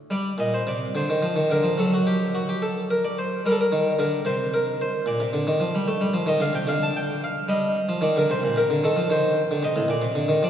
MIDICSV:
0, 0, Header, 1, 2, 480
1, 0, Start_track
1, 0, Key_signature, -2, "minor"
1, 0, Tempo, 555042
1, 98, Time_signature, 12, 3, 24, 8
1, 2976, Tempo, 538600
1, 9266, End_track
2, 0, Start_track
2, 0, Title_t, "Harpsichord"
2, 0, Program_c, 0, 6
2, 90, Note_on_c, 0, 55, 47
2, 104, Note_on_c, 0, 74, 73
2, 267, Note_off_c, 0, 55, 0
2, 328, Note_on_c, 0, 46, 45
2, 343, Note_off_c, 0, 74, 0
2, 345, Note_on_c, 0, 75, 66
2, 463, Note_off_c, 0, 75, 0
2, 467, Note_on_c, 0, 72, 61
2, 506, Note_off_c, 0, 46, 0
2, 579, Note_on_c, 0, 48, 47
2, 584, Note_off_c, 0, 72, 0
2, 590, Note_on_c, 0, 74, 69
2, 752, Note_off_c, 0, 48, 0
2, 821, Note_on_c, 0, 50, 47
2, 825, Note_off_c, 0, 74, 0
2, 834, Note_on_c, 0, 72, 74
2, 934, Note_off_c, 0, 50, 0
2, 947, Note_on_c, 0, 51, 42
2, 1056, Note_on_c, 0, 53, 45
2, 1057, Note_off_c, 0, 51, 0
2, 1172, Note_off_c, 0, 53, 0
2, 1175, Note_on_c, 0, 51, 41
2, 1292, Note_off_c, 0, 51, 0
2, 1298, Note_on_c, 0, 50, 47
2, 1307, Note_off_c, 0, 72, 0
2, 1311, Note_on_c, 0, 70, 68
2, 1411, Note_on_c, 0, 53, 42
2, 1414, Note_off_c, 0, 50, 0
2, 1531, Note_off_c, 0, 53, 0
2, 1536, Note_on_c, 0, 54, 46
2, 1548, Note_off_c, 0, 70, 0
2, 1552, Note_on_c, 0, 69, 68
2, 1669, Note_off_c, 0, 69, 0
2, 1676, Note_on_c, 0, 66, 61
2, 1789, Note_on_c, 0, 67, 67
2, 1790, Note_off_c, 0, 66, 0
2, 2026, Note_off_c, 0, 67, 0
2, 2031, Note_on_c, 0, 66, 65
2, 2147, Note_off_c, 0, 66, 0
2, 2154, Note_on_c, 0, 67, 56
2, 2268, Note_off_c, 0, 67, 0
2, 2269, Note_on_c, 0, 69, 62
2, 2469, Note_off_c, 0, 69, 0
2, 2513, Note_on_c, 0, 70, 63
2, 2571, Note_off_c, 0, 54, 0
2, 2626, Note_off_c, 0, 70, 0
2, 2634, Note_on_c, 0, 74, 68
2, 2746, Note_off_c, 0, 74, 0
2, 2755, Note_on_c, 0, 72, 67
2, 2950, Note_off_c, 0, 72, 0
2, 2988, Note_on_c, 0, 55, 47
2, 2998, Note_on_c, 0, 70, 70
2, 3045, Note_on_c, 0, 69, 61
2, 3049, Note_off_c, 0, 70, 0
2, 3104, Note_off_c, 0, 69, 0
2, 3126, Note_on_c, 0, 70, 75
2, 3158, Note_off_c, 0, 55, 0
2, 3225, Note_on_c, 0, 51, 47
2, 3395, Note_off_c, 0, 51, 0
2, 3460, Note_off_c, 0, 70, 0
2, 3462, Note_on_c, 0, 50, 48
2, 3471, Note_on_c, 0, 70, 72
2, 3635, Note_off_c, 0, 50, 0
2, 3671, Note_off_c, 0, 70, 0
2, 3697, Note_on_c, 0, 48, 50
2, 3705, Note_on_c, 0, 72, 75
2, 3943, Note_off_c, 0, 72, 0
2, 3953, Note_on_c, 0, 70, 73
2, 4152, Note_off_c, 0, 70, 0
2, 4200, Note_on_c, 0, 72, 71
2, 4217, Note_off_c, 0, 48, 0
2, 4396, Note_off_c, 0, 72, 0
2, 4420, Note_on_c, 0, 46, 44
2, 4433, Note_on_c, 0, 74, 73
2, 4535, Note_off_c, 0, 46, 0
2, 4546, Note_on_c, 0, 48, 45
2, 4659, Note_off_c, 0, 48, 0
2, 4663, Note_on_c, 0, 50, 46
2, 4779, Note_off_c, 0, 50, 0
2, 4785, Note_on_c, 0, 51, 47
2, 4901, Note_off_c, 0, 51, 0
2, 4902, Note_on_c, 0, 53, 47
2, 5019, Note_off_c, 0, 53, 0
2, 5031, Note_on_c, 0, 55, 46
2, 5144, Note_off_c, 0, 55, 0
2, 5146, Note_on_c, 0, 57, 49
2, 5261, Note_off_c, 0, 57, 0
2, 5265, Note_on_c, 0, 55, 47
2, 5378, Note_on_c, 0, 53, 45
2, 5380, Note_off_c, 0, 55, 0
2, 5491, Note_on_c, 0, 51, 50
2, 5497, Note_off_c, 0, 53, 0
2, 5507, Note_on_c, 0, 75, 75
2, 5514, Note_off_c, 0, 74, 0
2, 5611, Note_on_c, 0, 50, 49
2, 5612, Note_off_c, 0, 51, 0
2, 5627, Note_off_c, 0, 75, 0
2, 5627, Note_on_c, 0, 77, 76
2, 5730, Note_on_c, 0, 48, 46
2, 5733, Note_off_c, 0, 50, 0
2, 5747, Note_off_c, 0, 77, 0
2, 5748, Note_on_c, 0, 79, 72
2, 5853, Note_off_c, 0, 48, 0
2, 5854, Note_on_c, 0, 50, 53
2, 5868, Note_off_c, 0, 79, 0
2, 5868, Note_on_c, 0, 77, 86
2, 5988, Note_off_c, 0, 77, 0
2, 5993, Note_on_c, 0, 81, 77
2, 6112, Note_off_c, 0, 81, 0
2, 6118, Note_on_c, 0, 79, 84
2, 6318, Note_off_c, 0, 79, 0
2, 6361, Note_on_c, 0, 77, 76
2, 6377, Note_off_c, 0, 50, 0
2, 6578, Note_on_c, 0, 55, 53
2, 6589, Note_on_c, 0, 75, 81
2, 6593, Note_off_c, 0, 77, 0
2, 6840, Note_off_c, 0, 55, 0
2, 6939, Note_on_c, 0, 53, 48
2, 6995, Note_off_c, 0, 75, 0
2, 7050, Note_on_c, 0, 51, 53
2, 7057, Note_off_c, 0, 53, 0
2, 7061, Note_on_c, 0, 74, 73
2, 7172, Note_off_c, 0, 51, 0
2, 7184, Note_off_c, 0, 74, 0
2, 7184, Note_on_c, 0, 50, 49
2, 7197, Note_on_c, 0, 70, 69
2, 7299, Note_off_c, 0, 50, 0
2, 7301, Note_on_c, 0, 48, 52
2, 7312, Note_off_c, 0, 70, 0
2, 7316, Note_on_c, 0, 72, 74
2, 7417, Note_off_c, 0, 48, 0
2, 7427, Note_on_c, 0, 46, 49
2, 7539, Note_off_c, 0, 46, 0
2, 7540, Note_on_c, 0, 48, 48
2, 7549, Note_off_c, 0, 72, 0
2, 7549, Note_on_c, 0, 70, 71
2, 7654, Note_off_c, 0, 48, 0
2, 7665, Note_on_c, 0, 50, 50
2, 7777, Note_off_c, 0, 50, 0
2, 7784, Note_off_c, 0, 70, 0
2, 7785, Note_on_c, 0, 51, 51
2, 7795, Note_on_c, 0, 69, 77
2, 7897, Note_off_c, 0, 51, 0
2, 7899, Note_on_c, 0, 53, 50
2, 8015, Note_off_c, 0, 53, 0
2, 8019, Note_on_c, 0, 51, 54
2, 8028, Note_off_c, 0, 69, 0
2, 8033, Note_on_c, 0, 72, 81
2, 8280, Note_off_c, 0, 51, 0
2, 8385, Note_on_c, 0, 50, 52
2, 8488, Note_on_c, 0, 48, 48
2, 8498, Note_off_c, 0, 50, 0
2, 8504, Note_on_c, 0, 75, 76
2, 8509, Note_off_c, 0, 72, 0
2, 8606, Note_on_c, 0, 45, 52
2, 8608, Note_off_c, 0, 48, 0
2, 8706, Note_off_c, 0, 75, 0
2, 8717, Note_on_c, 0, 46, 58
2, 8726, Note_off_c, 0, 45, 0
2, 8732, Note_on_c, 0, 74, 80
2, 8836, Note_on_c, 0, 48, 49
2, 8841, Note_off_c, 0, 46, 0
2, 8959, Note_off_c, 0, 48, 0
2, 8959, Note_on_c, 0, 50, 56
2, 9074, Note_on_c, 0, 51, 54
2, 9080, Note_off_c, 0, 50, 0
2, 9139, Note_off_c, 0, 74, 0
2, 9197, Note_off_c, 0, 51, 0
2, 9202, Note_on_c, 0, 53, 55
2, 9213, Note_on_c, 0, 74, 89
2, 9266, Note_off_c, 0, 53, 0
2, 9266, Note_off_c, 0, 74, 0
2, 9266, End_track
0, 0, End_of_file